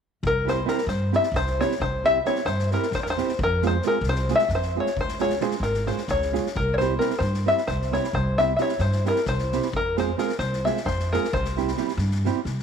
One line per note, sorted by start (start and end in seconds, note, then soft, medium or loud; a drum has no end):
0.23 0.62 C2 medium
0.23 0.49 A#4 loud
0.23 kick medium
0.45 0.58 G3 medium
0.45 0.59 C4 soft
0.45 0.59 E4 medium
0.45 0.59 G4 medium
0.45 snare soft
0.49 0.68 C5 medium
0.65 0.79 G3 medium
0.65 0.79 C4 medium
0.65 0.79 E4 soft
0.65 0.80 G4 medium
0.65 0.88 A#4 medium
0.65 snare soft
0.78 snare soft
0.86 1.15 G2 medium
0.86 1.15 C5 medium
0.86 snare soft
1.12 1.26 G3 soft
1.12 1.26 C4 soft
1.12 1.26 E4 medium
1.12 1.26 G4 medium
1.12 1.36 E5 medium
1.12 snare soft
1.23 snare soft
1.32 1.60 C2 medium
1.32 kick medium
1.32 snare soft
1.36 1.62 C5 loud
1.47 snare soft
1.59 1.72 G3 medium
1.59 1.73 C4 medium
1.59 1.73 E4 soft
1.59 1.74 G4 medium
1.59 1.82 C#5 medium
1.59 snare soft
1.72 snare soft
1.80 2.19 C2 medium
1.80 2.03 C5 medium
1.80 kick medium
2.04 2.17 G3 medium
2.04 2.17 C4 medium
2.04 2.18 E4 medium
2.04 2.18 G4 medium
2.04 2.26 E5 loud
2.04 snare soft
2.25 2.38 G3 medium
2.25 2.38 C4 medium
2.25 2.38 E4 medium
2.25 2.39 G4 medium
2.25 2.47 C#5 loud
2.25 snare soft
2.36 snare soft
2.45 2.73 G2 medium
2.45 2.72 C5 loud
2.45 snare soft
2.59 snare soft
2.71 2.85 G3 medium
2.71 2.85 C4 medium
2.71 2.85 E4 medium
2.71 2.85 G4 medium
2.71 2.92 A#4 medium
2.71 snare soft
2.83 snare soft
2.91 3.20 E2 medium
2.91 3.02 C5 medium
2.91 kick medium
2.91 snare soft
3.03 3.10 A#4 medium
3.03 snare soft
3.10 3.41 C5 medium
3.17 3.31 G3 medium
3.17 3.31 C4 medium
3.17 3.31 E4 soft
3.17 3.31 G4 medium
3.17 snare soft
3.29 snare soft
3.39 3.78 F2 loud
3.39 kick medium
3.43 3.63 A#4 loud
3.62 3.75 G#3 medium
3.62 3.75 C4 medium
3.62 3.76 F4 medium
3.62 3.76 G#4 medium
3.62 snare soft
3.67 3.86 C5 medium
3.82 3.96 G#3 medium
3.82 3.96 C4 soft
3.82 3.97 F4 soft
3.82 snare soft
3.87 3.98 G#4 medium
3.87 4.06 A#4 medium
4.01 4.30 C2 loud
4.01 snare soft
4.09 4.33 C5 loud
4.15 snare soft
4.28 4.42 G#3 medium
4.28 4.43 C4 medium
4.28 4.43 F4 medium
4.28 4.43 G#4 medium
4.28 snare soft
4.36 4.52 E5 loud
4.36 snare soft
4.48 4.77 F2 medium
4.48 kick medium
4.48 snare soft
4.55 4.79 C5 medium
4.62 snare soft
4.75 4.89 G#3 medium
4.75 4.89 C4 medium
4.75 4.89 F4 medium
4.75 4.89 G#4 medium
4.80 5.00 C#5 medium
4.86 snare soft
4.96 5.36 C#2 medium
4.96 kick medium
5.01 5.21 C5 medium
5.09 snare soft
5.19 5.33 G#3 soft
5.19 5.33 C#4 medium
5.19 5.34 F4 medium
5.19 5.34 G#4 medium
5.19 5.42 C#5 medium
5.19 snare soft
5.30 snare soft
5.41 5.54 G#3 medium
5.41 5.54 C#4 medium
5.41 5.54 F4 medium
5.41 5.55 G#4 medium
5.41 5.63 C5 medium
5.41 snare soft
5.51 snare soft
5.60 5.89 G#1 medium
5.60 5.89 A#4 medium
5.60 snare soft
5.74 snare soft
5.86 6.00 G#3 medium
5.86 6.01 C#4 soft
5.86 6.01 F4 soft
5.86 6.01 G#4 medium
5.86 6.09 C5 medium
5.86 snare soft
5.98 snare soft
6.08 6.37 C#2 loud
6.08 6.54 C#5 medium
6.08 kick medium
6.08 snare soft
6.22 snare soft
6.32 6.46 G#3 soft
6.32 6.47 C#4 soft
6.32 6.47 F4 medium
6.32 6.47 G#4 medium
6.32 snare soft
6.46 snare soft
6.55 6.94 C2 medium
6.55 6.75 A#4 medium
6.55 kick medium
6.74 6.78 C#5 medium
6.78 6.92 G3 medium
6.78 6.93 C4 soft
6.78 6.93 E4 soft
6.78 6.93 G4 medium
6.78 7.00 C5 medium
6.78 snare soft
6.99 7.12 G3 medium
6.99 7.13 C4 medium
6.99 7.13 E4 medium
6.99 7.13 G4 medium
6.99 7.21 A#4 medium
6.99 snare soft
7.11 snare soft
7.19 7.49 G2 loud
7.19 7.46 C5 medium
7.19 snare soft
7.34 snare soft
7.46 7.59 G3 medium
7.46 7.59 C4 soft
7.46 7.60 E4 medium
7.46 7.60 G4 medium
7.46 7.69 E5 medium
7.46 snare soft
7.58 snare soft
7.67 7.96 C2 medium
7.67 7.94 C5 medium
7.67 kick medium
7.67 snare soft
7.82 snare soft
7.92 8.06 G3 medium
7.92 8.06 C4 medium
7.92 8.06 E4 medium
7.92 8.07 G4 medium
7.92 8.15 C#5 medium
7.92 snare soft
8.04 snare soft
8.13 8.53 C2 medium
8.13 8.39 C5 loud
8.13 kick medium
8.38 8.51 G3 medium
8.38 8.52 C4 soft
8.38 8.52 E4 medium
8.38 8.52 G4 medium
8.38 8.54 E5 medium
8.38 snare soft
8.57 8.71 G3 soft
8.57 8.72 C4 medium
8.57 8.72 E4 soft
8.57 8.72 G4 medium
8.57 8.60 E5 medium
8.57 snare soft
8.62 8.82 C#5 medium
8.69 snare soft
8.79 9.08 G2 loud
8.79 9.07 C5 medium
8.79 snare soft
8.92 snare soft
9.05 9.18 G3 soft
9.05 9.18 C4 medium
9.05 9.19 E4 soft
9.05 9.19 G4 medium
9.05 9.27 A#4 medium
9.05 snare soft
9.16 snare soft
9.26 9.55 C2 medium
9.26 9.76 C5 medium
9.26 kick medium
9.26 snare soft
9.39 snare soft
9.52 9.66 G3 medium
9.52 9.66 C4 medium
9.52 9.67 E4 medium
9.52 9.67 G4 medium
9.52 snare soft
9.62 snare soft
9.73 10.12 F2 medium
9.73 9.99 A#4 medium
9.73 kick medium
9.96 10.10 G#3 medium
9.96 10.10 C4 medium
9.96 10.10 F4 medium
9.96 10.11 G#4 medium
9.96 10.18 C5 medium
9.96 snare soft
10.17 10.31 G#3 medium
10.17 10.31 C4 medium
10.17 10.31 F4 medium
10.17 10.31 G#4 medium
10.17 10.39 A#4 medium
10.17 snare soft
10.29 snare soft
10.39 10.67 C2 medium
10.39 10.66 C5 medium
10.39 snare soft
10.53 snare soft
10.64 10.78 G#3 medium
10.64 10.78 C4 soft
10.64 10.79 F4 medium
10.64 10.79 G#4 medium
10.64 10.86 E5 medium
10.64 snare soft
10.77 snare soft
10.85 11.14 F2 medium
10.85 11.13 C5 medium
10.85 kick medium
10.85 snare soft
11.00 snare soft
11.13 11.26 G#3 medium
11.13 11.26 C4 medium
11.13 11.26 F4 medium
11.13 11.27 G#4 medium
11.13 11.32 A#4 medium
11.13 snare soft
11.24 snare soft
11.33 11.72 C2 medium
11.33 12.63 C5 medium
11.33 kick medium
11.45 snare soft
11.56 11.70 G3 medium
11.56 11.70 C4 medium
11.56 11.70 E4 medium
11.56 11.71 G4 medium
11.56 snare soft
11.68 snare soft
11.77 11.91 G3 medium
11.77 11.91 C4 soft
11.77 11.91 E4 medium
11.77 11.92 G4 medium
11.77 snare soft
11.88 snare soft
11.97 12.26 G2 loud
11.97 snare soft
12.11 snare soft
12.25 12.38 G3 medium
12.25 12.39 C4 medium
12.25 12.39 E4 medium
12.25 12.39 G4 medium
12.25 snare soft
12.45 12.63 C2 medium
12.45 snare soft
12.60 snare soft